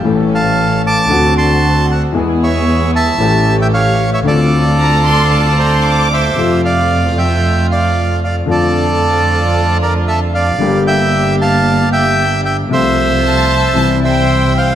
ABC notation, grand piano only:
X:1
M:4/4
L:1/8
Q:1/4=114
K:Dm
V:1 name="Grand piano" clef=bass
[A,,,A,,E,A,^CA]4 [D,,D,A,=C^F]4 | [E,,E,^G,=B,^G]4 [A,,,A,,E,A,^C=G]4 | [D,,D,A,CF]8 | [K:F] [F,,C,F,A,F]8 |
[F,,D,F,A,F]8 | [G,,,G,,D,G,B,G]8 | [C,,C,F,A,F]4 [C,,C,E,G,E]4 |]